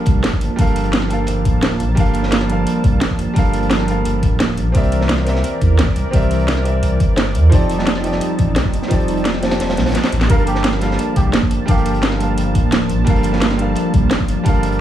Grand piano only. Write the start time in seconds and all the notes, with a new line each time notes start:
Already playing: G3 D4 A4 A#4 F5
0.56 G3 D4 A4 A#4
0.61 F5
1.08 G3 D4 A4 A#4
1.13 F5
1.95 G3 D4 A4 A#4
2.00 F5
2.47 G3 D4 A4 A#4
2.52 F5
3.34 G3 D4 A4 A#4
3.39 F5
3.86 G3 D4 A4 A#4
3.91 F5
4.72 C4 G4 A#4 D5
4.78 E5
5.24 C4 G4 A#4 D5
5.29 E5
6.11 C4 G4 A#4 D5
6.16 E5
6.63 C4 G4 A#4 D5
6.68 E5
7.50 F3 C4 D#4 G4
7.54 A4 D5
8.02 F3 C4 D#4 G4
8.06 A4 D5
8.88 F3 C4 D#4 G4
8.92 A4 D5
9.40 F3 C4 D#4 G4
9.45 A4 D5
10.27 G3 D4 A4 A#4
10.32 F5
10.79 G3 D4 A4 A#4
10.84 F5
11.66 G3 D4 A4 A#4
11.71 F5
12.18 G3 D4 A4 A#4
12.23 F5
13.04 G3 D4 A4 A#4
13.10 F5
13.57 G3 D4 A4 A#4
13.62 F5
14.44 G3 D4 A4 A#4
14.49 F5